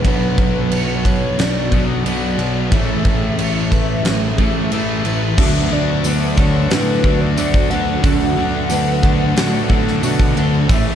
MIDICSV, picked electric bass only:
0, 0, Header, 1, 2, 480
1, 0, Start_track
1, 0, Tempo, 665927
1, 31, Time_signature, 4, 2, 24, 8
1, 7893, End_track
2, 0, Start_track
2, 0, Title_t, "Picked electric bass"
2, 0, Program_c, 0, 34
2, 36, Note_on_c, 0, 35, 88
2, 263, Note_off_c, 0, 35, 0
2, 272, Note_on_c, 0, 35, 82
2, 501, Note_off_c, 0, 35, 0
2, 518, Note_on_c, 0, 35, 75
2, 745, Note_off_c, 0, 35, 0
2, 758, Note_on_c, 0, 35, 83
2, 985, Note_off_c, 0, 35, 0
2, 999, Note_on_c, 0, 35, 76
2, 1225, Note_off_c, 0, 35, 0
2, 1241, Note_on_c, 0, 35, 89
2, 1467, Note_off_c, 0, 35, 0
2, 1473, Note_on_c, 0, 35, 83
2, 1703, Note_off_c, 0, 35, 0
2, 1714, Note_on_c, 0, 35, 78
2, 1943, Note_off_c, 0, 35, 0
2, 1960, Note_on_c, 0, 33, 88
2, 2187, Note_off_c, 0, 33, 0
2, 2199, Note_on_c, 0, 33, 78
2, 2426, Note_off_c, 0, 33, 0
2, 2433, Note_on_c, 0, 33, 71
2, 2663, Note_off_c, 0, 33, 0
2, 2678, Note_on_c, 0, 33, 72
2, 2906, Note_off_c, 0, 33, 0
2, 2912, Note_on_c, 0, 33, 79
2, 3143, Note_off_c, 0, 33, 0
2, 3158, Note_on_c, 0, 33, 80
2, 3386, Note_off_c, 0, 33, 0
2, 3399, Note_on_c, 0, 33, 81
2, 3626, Note_off_c, 0, 33, 0
2, 3640, Note_on_c, 0, 33, 80
2, 3867, Note_off_c, 0, 33, 0
2, 3877, Note_on_c, 0, 38, 87
2, 4092, Note_off_c, 0, 38, 0
2, 4123, Note_on_c, 0, 38, 85
2, 4335, Note_off_c, 0, 38, 0
2, 4359, Note_on_c, 0, 38, 79
2, 4572, Note_off_c, 0, 38, 0
2, 4596, Note_on_c, 0, 38, 85
2, 4811, Note_off_c, 0, 38, 0
2, 4839, Note_on_c, 0, 45, 91
2, 5052, Note_off_c, 0, 45, 0
2, 5077, Note_on_c, 0, 38, 95
2, 5291, Note_off_c, 0, 38, 0
2, 5321, Note_on_c, 0, 38, 95
2, 5748, Note_off_c, 0, 38, 0
2, 5792, Note_on_c, 0, 38, 90
2, 6008, Note_off_c, 0, 38, 0
2, 6039, Note_on_c, 0, 38, 100
2, 6251, Note_off_c, 0, 38, 0
2, 6275, Note_on_c, 0, 38, 83
2, 6489, Note_off_c, 0, 38, 0
2, 6512, Note_on_c, 0, 38, 79
2, 6727, Note_off_c, 0, 38, 0
2, 6748, Note_on_c, 0, 45, 85
2, 7179, Note_off_c, 0, 45, 0
2, 7231, Note_on_c, 0, 47, 92
2, 7447, Note_off_c, 0, 47, 0
2, 7467, Note_on_c, 0, 38, 93
2, 7684, Note_off_c, 0, 38, 0
2, 7708, Note_on_c, 0, 33, 101
2, 7893, Note_off_c, 0, 33, 0
2, 7893, End_track
0, 0, End_of_file